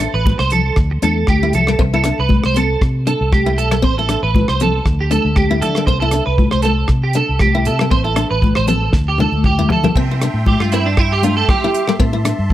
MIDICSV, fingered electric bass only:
0, 0, Header, 1, 2, 480
1, 0, Start_track
1, 0, Key_signature, 0, "major"
1, 0, Tempo, 510638
1, 1685, Time_signature, 4, 2, 24, 8
1, 11783, End_track
2, 0, Start_track
2, 0, Title_t, "Fingered electric bass"
2, 0, Program_c, 0, 33
2, 129, Note_on_c, 0, 33, 73
2, 324, Note_off_c, 0, 33, 0
2, 374, Note_on_c, 0, 36, 75
2, 656, Note_off_c, 0, 36, 0
2, 718, Note_on_c, 0, 38, 77
2, 914, Note_off_c, 0, 38, 0
2, 965, Note_on_c, 0, 40, 71
2, 1181, Note_off_c, 0, 40, 0
2, 1205, Note_on_c, 0, 38, 67
2, 1421, Note_off_c, 0, 38, 0
2, 1444, Note_on_c, 0, 36, 77
2, 1677, Note_off_c, 0, 36, 0
2, 1681, Note_on_c, 0, 36, 81
2, 1980, Note_off_c, 0, 36, 0
2, 2057, Note_on_c, 0, 36, 73
2, 2250, Note_off_c, 0, 36, 0
2, 2305, Note_on_c, 0, 36, 73
2, 2584, Note_off_c, 0, 36, 0
2, 2648, Note_on_c, 0, 48, 74
2, 2946, Note_off_c, 0, 48, 0
2, 3015, Note_on_c, 0, 36, 86
2, 3376, Note_off_c, 0, 36, 0
2, 3376, Note_on_c, 0, 35, 80
2, 3608, Note_off_c, 0, 35, 0
2, 3608, Note_on_c, 0, 33, 82
2, 3906, Note_off_c, 0, 33, 0
2, 3975, Note_on_c, 0, 33, 73
2, 4169, Note_off_c, 0, 33, 0
2, 4220, Note_on_c, 0, 36, 69
2, 4502, Note_off_c, 0, 36, 0
2, 4563, Note_on_c, 0, 38, 84
2, 4863, Note_off_c, 0, 38, 0
2, 4934, Note_on_c, 0, 38, 86
2, 5285, Note_off_c, 0, 38, 0
2, 5285, Note_on_c, 0, 50, 94
2, 5518, Note_on_c, 0, 36, 77
2, 5532, Note_off_c, 0, 50, 0
2, 5820, Note_off_c, 0, 36, 0
2, 5891, Note_on_c, 0, 36, 70
2, 6088, Note_off_c, 0, 36, 0
2, 6140, Note_on_c, 0, 36, 75
2, 6422, Note_off_c, 0, 36, 0
2, 6473, Note_on_c, 0, 48, 81
2, 6778, Note_off_c, 0, 48, 0
2, 6853, Note_on_c, 0, 36, 82
2, 7206, Note_on_c, 0, 48, 89
2, 7220, Note_off_c, 0, 36, 0
2, 7437, Note_on_c, 0, 33, 80
2, 7451, Note_off_c, 0, 48, 0
2, 7740, Note_off_c, 0, 33, 0
2, 7809, Note_on_c, 0, 33, 70
2, 8007, Note_off_c, 0, 33, 0
2, 8058, Note_on_c, 0, 33, 76
2, 8341, Note_off_c, 0, 33, 0
2, 8398, Note_on_c, 0, 38, 75
2, 8700, Note_off_c, 0, 38, 0
2, 8760, Note_on_c, 0, 38, 83
2, 9107, Note_off_c, 0, 38, 0
2, 9107, Note_on_c, 0, 50, 84
2, 9309, Note_off_c, 0, 50, 0
2, 9359, Note_on_c, 0, 48, 94
2, 9660, Note_off_c, 0, 48, 0
2, 9718, Note_on_c, 0, 45, 84
2, 9918, Note_off_c, 0, 45, 0
2, 9967, Note_on_c, 0, 43, 75
2, 10740, Note_off_c, 0, 43, 0
2, 11273, Note_on_c, 0, 45, 94
2, 11572, Note_off_c, 0, 45, 0
2, 11645, Note_on_c, 0, 43, 86
2, 11783, Note_off_c, 0, 43, 0
2, 11783, End_track
0, 0, End_of_file